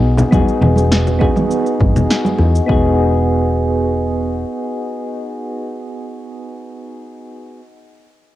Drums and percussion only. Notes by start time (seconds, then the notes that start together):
0.17 high bongo, low conga, shaker
0.32 kick, high conga, shaker
0.48 shaker
0.62 low conga
0.76 high bongo, high conga, shaker
0.92 snare, shaker
1.07 low conga, shaker
1.21 kick, high bongo
1.36 high conga, low conga, shaker
1.51 shaker
1.66 shaker
1.80 kick, high bongo, high conga
1.96 low conga, shaker
2.10 snare, shaker
2.25 high conga, shaker
2.39 high bongo
2.55 shaker
2.69 kick